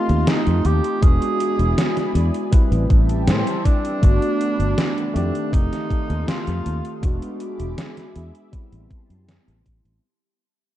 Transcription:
Already playing: tine electric piano A3 C4 D#4 G4, tenor saxophone F4, analog synth pad F4 D#5 A5 C6
0.09 fingered electric bass D#2, closed hi-hat
0.27 tenor saxophone D#4, snare, closed hi-hat
0.47 fingered electric bass F2, closed hi-hat
0.65 fingered electric bass D#2, tenor saxophone G4, closed hi-hat
0.84 closed hi-hat
1.01 fingered electric bass E1, tine electric piano G#3 B3 D4 F#4, analog synth pad E4 D5 G#5 B5, tenor saxophone G#4, kick, closed hi-hat
1.22 closed hi-hat
1.40 closed hi-hat
1.59 fingered electric bass E1, closed hi-hat
1.78 snare, closed hi-hat
1.97 snare, closed hi-hat
2.15 fingered electric bass E2, closed hi-hat
2.34 closed hi-hat
2.51 tine electric piano G3 C4 E4 B4, analog synth pad G4 E5 G5 A5, kick, closed hi-hat
2.72 fingered electric bass A1, closed hi-hat
2.90 fingered electric bass A1, kick, closed hi-hat
3.09 closed hi-hat
3.27 fingered electric bass A2, tenor saxophone C4, snare, closed hi-hat
3.47 closed hi-hat
3.65 tenor saxophone D4, kick, closed hi-hat
3.85 closed hi-hat
4.02 fingered electric bass G1, analog synth pad G3 F#5 A5 B5, tine electric piano A3 B3 D4 F#4, kick, closed hi-hat
4.22 closed hi-hat
4.41 closed hi-hat
4.59 fingered electric bass G1, closed hi-hat
4.78 snare, closed hi-hat
4.98 closed hi-hat
5.14 fingered electric bass F2, tine electric piano D#3 A3 C4 G4, tenor saxophone D4, analog synth pad A4 F5 C6 D#6, closed hi-hat
5.35 closed hi-hat
5.53 fingered electric bass F1, tenor saxophone D#4, kick, closed hi-hat
5.73 snare, closed hi-hat
5.91 kick, closed hi-hat
6.10 fingered electric bass D#2, closed hi-hat
6.28 tenor saxophone F4, snare, closed hi-hat
6.47 fingered electric bass F2, closed hi-hat
6.66 fingered electric bass D#2, closed hi-hat
6.85 closed hi-hat
7.02 fingered electric bass E1, tine electric piano G#3 B3 D4 F#4, analog synth pad G#4 E5 B5 D6, kick, closed hi-hat
7.22 closed hi-hat
7.40 closed hi-hat
7.60 fingered electric bass E1, closed hi-hat
7.78 snare, closed hi-hat
7.97 snare, closed hi-hat
8.16 fingered electric bass E2, closed hi-hat
8.35 closed hi-hat
8.51 tine electric piano G3 B3 C4 E4, analog synth pad G4 A5 C6, kick, closed hi-hat
8.72 fingered electric bass A1, closed hi-hat
8.91 kick, closed hi-hat
9.10 fingered electric bass F#2, closed hi-hat
9.29 snare, closed hi-hat
9.48 fingered electric bass A1, closed hi-hat
9.66 fingered electric bass A1, kick, closed hi-hat
9.85 fingered electric bass A1, closed hi-hat

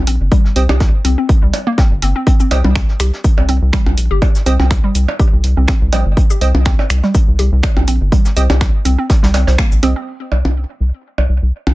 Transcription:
0.07 analog synth bass A#1, synth arpeggio sound C4, closed hi-hat, open hi-hat
0.20 analog synth bass G1
0.32 synth arpeggio sound G3, kick, closed hi-hat
0.45 snare
0.56 analog synth bass C2, synth stab C4 G4 D#5, closed hi-hat, open hi-hat
0.69 analog synth bass C2, synth arpeggio sound G4, snare, percussion blips
0.80 kick, snare, closed hi-hat
1.05 analog synth bass C2, synth arpeggio sound C4, closed hi-hat, open hi-hat
1.18 synth arpeggio sound C4
1.29 kick, closed hi-hat
1.42 analog synth bass C2, synth arpeggio sound G3
1.53 closed hi-hat, open hi-hat, percussion blips
1.67 synth arpeggio sound A#3
1.78 synth arpeggio sound C4, kick, snare, closed hi-hat
1.91 analog synth bass G1
2.02 analog synth bass G1, synth arpeggio sound C4, closed hi-hat, open hi-hat
2.16 synth arpeggio sound C4
2.27 synth arpeggio sound C4, kick, closed hi-hat
2.40 synth arpeggio sound C4, cabasa
2.51 analog synth bass C2, synth stab C4 G4 D#5, closed hi-hat, open hi-hat, percussion blips
2.64 analog synth bass C2, synth arpeggio sound G3, percussion blips
2.75 finger snap, kick, snare, closed hi-hat
2.89 snare
2.99 analog synth bass C2, synth arpeggio sound G4, finger snap, closed hi-hat, open hi-hat, cabasa
3.13 snare
3.24 kick, closed hi-hat, cabasa
3.38 analog synth bass C2, synth arpeggio sound C4, percussion blips
3.49 analog synth bass C2, synth arpeggio sound C4, closed hi-hat, open hi-hat
3.62 analog synth bass C2
3.73 synth arpeggio sound G3, finger snap, kick, snare, closed hi-hat
3.86 analog synth bass C2, percussion blips
3.97 analog synth bass A#1, closed hi-hat, open hi-hat, cabasa
4.11 analog synth bass G1, synth arpeggio sound G4
4.22 kick, closed hi-hat, percussion blips
4.35 snare, cabasa
4.46 analog synth bass C2, synth arpeggio sound C4, synth stab C4 G4 D#5, closed hi-hat, open hi-hat, cabasa
4.59 analog synth bass C2, synth arpeggio sound C4, snare, percussion blips
4.71 finger snap, kick, snare, closed hi-hat
4.84 synth arpeggio sound G3
4.94 analog synth bass C2, closed hi-hat, open hi-hat, cabasa
5.08 percussion blips
5.19 synth arpeggio sound G4, kick, closed hi-hat
5.33 analog synth bass C2
5.44 analog synth bass C2, closed hi-hat, open hi-hat
5.57 analog synth bass C2, synth arpeggio sound C4
5.67 synth arpeggio sound C4, finger snap, kick, snare, closed hi-hat
5.81 analog synth bass C2
5.92 analog synth bass A#1, synth arpeggio sound G3, synth stab C4 G4 D#5, closed hi-hat, open hi-hat, percussion blips
6.06 analog synth bass G1
6.17 kick, closed hi-hat
6.30 synth arpeggio sound G4, cabasa
6.41 analog synth bass C2, synth stab C4 G4 D#5, closed hi-hat, open hi-hat
6.55 analog synth bass C2, percussion blips
6.65 synth arpeggio sound C4, finger snap, kick, snare, closed hi-hat
6.79 synth arpeggio sound C4, snare, percussion blips
6.90 analog synth bass C2, finger snap, closed hi-hat, open hi-hat, cabasa
7.03 synth arpeggio sound G3, snare
7.15 kick, closed hi-hat, cabasa
7.28 analog synth bass C2
7.39 analog synth bass C2, synth arpeggio sound G4, closed hi-hat, open hi-hat
7.52 analog synth bass C2
7.63 finger snap, kick, snare, closed hi-hat, percussion blips
7.77 analog synth bass C2, synth arpeggio sound C4, percussion blips
7.87 analog synth bass A#1, synth arpeggio sound C4, closed hi-hat, open hi-hat, cabasa
8.01 analog synth bass G1
8.12 synth arpeggio sound G3, kick, closed hi-hat
8.25 snare, cabasa
8.37 analog synth bass C2, synth stab C4 G4 D#5, closed hi-hat, open hi-hat, cabasa
8.50 analog synth bass C2, synth arpeggio sound G4, snare, open hi-hat, percussion blips
8.61 finger snap, kick, snare, closed hi-hat
8.85 analog synth bass C2, synth arpeggio sound C4, closed hi-hat, open hi-hat, cabasa
8.99 synth arpeggio sound C4
9.09 kick, snare, closed hi-hat, open hi-hat
9.23 analog synth bass C2, synth arpeggio sound G3, snare, closed hi-hat
9.34 analog synth bass C2, synth arpeggio sound C4, snare, closed hi-hat, open hi-hat, percussion blips
9.47 analog synth bass C2, synth arpeggio sound C5, snare, closed hi-hat
9.58 synth arpeggio sound A#3, finger snap, kick, snare, closed hi-hat
9.72 analog synth bass A#1, cabasa
9.83 analog synth bass C2, synth stab C4 G4 D#5, synth arpeggio sound C4, closed hi-hat, open hi-hat
9.96 synth arpeggio sound C4
10.07 crash
10.32 analog synth bass C2, percussion blips
10.45 analog synth bass C2, percussion blips
10.80 analog synth bass C2
11.18 analog synth bass C2, percussion blips
11.29 analog synth bass C2
11.42 analog synth bass C2
11.67 analog synth bass C2, percussion blips

